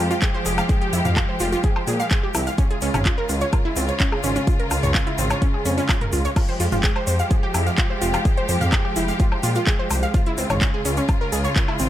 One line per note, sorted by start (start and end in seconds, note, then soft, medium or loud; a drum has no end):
0.00 0.13 F2 loud
0.00 2.54 F3 medium
0.00 2.54 G#3 medium
0.00 2.54 G4 loud
0.11 0.16 F4 loud
0.11 closed hi-hat soft
0.11 shaker medium
0.22 0.28 G#4 medium
0.22 kick loud
0.22 clap loud
0.22 closed hi-hat soft
0.22 shaker soft
0.34 0.37 C5 loud
0.46 0.60 F1 loud
0.46 0.51 G#4 medium
0.46 open hi-hat loud
0.46 shaker loud
0.58 0.63 F5 loud
0.58 closed hi-hat soft
0.58 low woodblock medium
0.58 shaker medium
0.69 0.75 G#4 medium
0.69 kick loud
0.69 closed hi-hat soft
0.69 shaker soft
0.81 0.87 G4 loud
0.81 closed hi-hat soft
0.93 1.00 F2 loud
0.93 0.98 E4 medium
0.93 open hi-hat loud
0.93 shaker medium
1.05 1.19 F2 medium
1.05 1.10 F5 medium
1.05 closed hi-hat soft
1.05 mid tom medium
1.05 shaker medium
1.16 1.25 F4 medium
1.16 kick loud
1.16 clap loud
1.16 closed hi-hat soft
1.16 low woodblock medium
1.16 shaker soft
1.29 1.36 C5 medium
1.40 1.55 F1 medium
1.40 1.46 F4 loud
1.40 open hi-hat loud
1.40 shaker medium
1.52 1.58 F4 loud
1.52 closed hi-hat soft
1.52 shaker medium
1.63 1.69 G#4 medium
1.63 kick loud
1.63 closed hi-hat soft
1.63 shaker soft
1.76 1.79 C5 loud
1.76 low woodblock medium
1.87 2.02 A#2 loud
1.87 1.93 G#4 medium
1.87 open hi-hat loud
1.87 shaker medium
2.00 2.05 F5 loud
2.00 closed hi-hat soft
2.00 shaker medium
2.10 2.17 G#4 medium
2.10 kick loud
2.10 clap loud
2.10 closed hi-hat soft
2.10 shaker soft
2.23 2.28 G4 loud
2.34 2.49 C2 medium
2.34 2.40 E4 medium
2.34 open hi-hat loud
2.34 low woodblock medium
2.34 shaker medium
2.47 2.52 F5 medium
2.47 closed hi-hat soft
2.47 shaker medium
2.58 6.32 C#3 medium
2.58 11.89 G#3 medium
2.58 2.67 C#4 medium
2.58 6.32 F4 loud
2.58 kick loud
2.58 closed hi-hat soft
2.58 shaker soft
2.71 2.78 G#4 medium
2.71 closed hi-hat soft
2.81 2.89 C#2 loud
2.81 2.87 C#4 loud
2.81 open hi-hat medium
2.81 shaker medium
2.94 3.08 G#1 medium
2.94 2.99 C#4 loud
2.94 closed hi-hat soft
2.94 mid tom medium
2.94 low woodblock medium
2.94 shaker soft
3.05 3.11 F4 medium
3.05 kick loud
3.05 clap loud
3.05 closed hi-hat soft
3.05 shaker soft
3.18 3.21 A#4 loud
3.29 3.44 C#2 medium
3.29 3.35 F4 medium
3.29 open hi-hat loud
3.29 shaker medium
3.41 3.47 C#5 loud
3.41 closed hi-hat soft
3.41 shaker medium
3.53 3.58 F4 medium
3.53 kick loud
3.53 closed hi-hat soft
3.53 low woodblock medium
3.53 shaker soft
3.65 3.70 E4 loud
3.76 3.91 C#2 loud
3.76 3.82 C4 medium
3.76 open hi-hat loud
3.76 shaker medium
3.88 3.94 C#5 medium
3.88 closed hi-hat soft
3.88 shaker soft
4.00 4.08 C#4 medium
4.00 kick loud
4.00 clap loud
4.00 closed hi-hat soft
4.00 shaker soft
4.12 4.20 G#4 medium
4.12 low woodblock medium
4.23 4.38 G#1 loud
4.23 4.29 C#4 loud
4.23 open hi-hat loud
4.23 shaker loud
4.36 4.41 C#4 loud
4.36 closed hi-hat soft
4.36 shaker medium
4.47 4.53 F4 medium
4.47 kick loud
4.47 closed hi-hat soft
4.47 shaker soft
4.60 4.63 A#4 loud
4.60 closed hi-hat soft
4.71 4.78 C#2 medium
4.71 4.76 F4 medium
4.71 open hi-hat loud
4.71 low woodblock medium
4.71 shaker medium
4.83 4.97 C#2 loud
4.83 4.88 C#5 loud
4.83 closed hi-hat soft
4.83 mid tom medium
4.83 shaker medium
4.95 5.00 F4 medium
4.95 kick loud
4.95 clap loud
4.95 closed hi-hat soft
4.95 shaker soft
5.07 5.12 E4 loud
5.07 closed hi-hat soft
5.18 5.33 G#1 medium
5.18 5.24 C4 medium
5.18 open hi-hat loud
5.18 shaker medium
5.30 5.36 C#5 medium
5.30 closed hi-hat soft
5.30 low woodblock medium
5.30 shaker medium
5.42 5.50 C#4 medium
5.42 kick loud
5.42 closed hi-hat soft
5.42 shaker soft
5.54 5.62 G#4 medium
5.65 5.80 F2 medium
5.65 5.71 C#4 loud
5.65 open hi-hat medium
5.65 shaker medium
5.78 5.83 C#4 loud
5.78 closed hi-hat soft
5.78 shaker medium
5.89 5.95 F4 medium
5.89 kick loud
5.89 clap loud
5.89 closed hi-hat soft
5.89 low woodblock soft
5.89 shaker soft
6.01 6.04 A#4 loud
6.01 closed hi-hat soft
6.01 mid tom medium
6.12 6.27 C#2 loud
6.12 6.18 F4 medium
6.12 open hi-hat loud
6.12 shaker medium
6.25 6.30 C#5 loud
6.25 closed hi-hat soft
6.25 shaker medium
6.36 10.11 F3 medium
6.36 6.45 F4 medium
6.36 10.11 G4 loud
6.36 kick loud
6.36 closed hi-hat soft
6.36 crash medium
6.36 low woodblock medium
6.36 shaker soft
6.49 6.56 C5 medium
6.49 closed hi-hat soft
6.60 6.67 F2 loud
6.60 6.65 F4 loud
6.60 open hi-hat loud
6.60 shaker loud
6.72 6.86 F1 medium
6.72 6.77 F4 loud
6.72 closed hi-hat soft
6.72 mid tom medium
6.72 shaker medium
6.83 6.89 G#4 medium
6.83 kick loud
6.83 clap loud
6.83 closed hi-hat soft
6.83 shaker soft
6.96 6.99 C5 loud
6.96 low woodblock soft
7.07 7.22 F2 medium
7.07 7.13 C5 medium
7.07 open hi-hat loud
7.07 shaker loud
7.19 7.25 F5 loud
7.19 closed hi-hat soft
7.19 shaker medium
7.31 7.36 G#4 medium
7.31 kick loud
7.31 closed hi-hat soft
7.31 shaker soft
7.43 7.48 G4 loud
7.54 7.69 F2 loud
7.54 7.60 E4 medium
7.54 open hi-hat loud
7.54 low woodblock soft
7.54 shaker medium
7.67 7.72 F5 medium
7.67 closed hi-hat soft
7.67 shaker medium
7.78 7.86 F4 medium
7.78 kick loud
7.78 clap loud
7.78 closed hi-hat soft
7.78 shaker soft
7.90 7.98 C5 medium
8.02 8.16 F1 loud
8.02 8.07 F4 loud
8.02 open hi-hat loud
8.02 shaker medium
8.14 8.19 F4 loud
8.14 closed hi-hat soft
8.14 low woodblock medium
8.14 shaker medium
8.25 8.31 G#4 medium
8.25 kick loud
8.25 closed hi-hat soft
8.25 shaker soft
8.37 8.41 C5 loud
8.37 closed hi-hat soft
8.49 8.56 F2 medium
8.49 8.54 C5 medium
8.49 open hi-hat loud
8.49 shaker medium
8.61 8.75 F2 loud
8.61 8.66 F5 loud
8.61 closed hi-hat soft
8.61 mid tom medium
8.61 shaker medium
8.72 8.78 G#4 medium
8.72 kick loud
8.72 clap loud
8.72 closed hi-hat soft
8.72 low woodblock soft
8.72 shaker soft
8.85 8.90 G4 loud
8.96 9.11 F1 loud
8.96 9.02 E4 medium
8.96 open hi-hat loud
8.96 shaker loud
9.08 9.13 F5 medium
9.08 closed hi-hat soft
9.08 shaker medium
9.19 9.28 F4 medium
9.19 kick loud
9.19 closed hi-hat soft
9.19 shaker soft
9.32 9.40 C5 medium
9.32 low woodblock soft
9.43 9.58 A#2 loud
9.43 9.49 F4 loud
9.43 open hi-hat loud
9.43 shaker loud
9.55 9.61 F4 loud
9.55 closed hi-hat soft
9.55 shaker medium
9.67 9.73 G#4 medium
9.67 kick loud
9.67 clap loud
9.67 closed hi-hat soft
9.67 shaker soft
9.79 9.82 C5 loud
9.90 10.05 C2 loud
9.90 9.96 C5 medium
9.90 open hi-hat loud
9.90 low woodblock soft
9.90 shaker loud
10.03 10.08 F5 loud
10.03 closed hi-hat soft
10.03 shaker medium
10.14 11.89 C#3 medium
10.14 11.89 F4 loud
10.14 10.20 F4 medium
10.14 kick loud
10.14 closed hi-hat soft
10.14 shaker soft
10.26 10.32 E4 loud
10.26 closed hi-hat soft
10.38 10.45 C#2 loud
10.38 10.43 C4 medium
10.38 open hi-hat loud
10.38 shaker medium
10.50 10.64 G#1 medium
10.50 10.55 C#5 medium
10.50 closed hi-hat soft
10.50 mid tom medium
10.50 low woodblock soft
10.50 shaker medium
10.61 10.70 C#4 medium
10.61 kick loud
10.61 clap loud
10.61 closed hi-hat soft
10.61 shaker soft
10.74 10.82 G#4 medium
10.85 11.00 C#2 medium
10.85 10.91 C#4 loud
10.85 open hi-hat loud
10.85 shaker loud
10.97 11.02 C#4 loud
10.97 closed hi-hat soft
10.97 shaker medium
11.08 11.14 F4 medium
11.08 kick loud
11.08 closed hi-hat soft
11.08 low woodblock medium
11.08 shaker soft
11.21 11.24 A#4 loud
11.32 11.47 C#2 loud
11.32 11.38 G#4 medium
11.32 open hi-hat loud
11.32 shaker loud
11.44 11.50 C#5 loud
11.44 closed hi-hat soft
11.44 shaker medium
11.56 11.62 F4 medium
11.56 kick loud
11.56 clap loud
11.56 closed hi-hat soft
11.56 shaker soft
11.68 11.73 E4 loud
11.68 low woodblock medium
11.79 11.89 G#1 medium
11.79 11.85 C4 medium
11.79 open hi-hat loud
11.79 shaker medium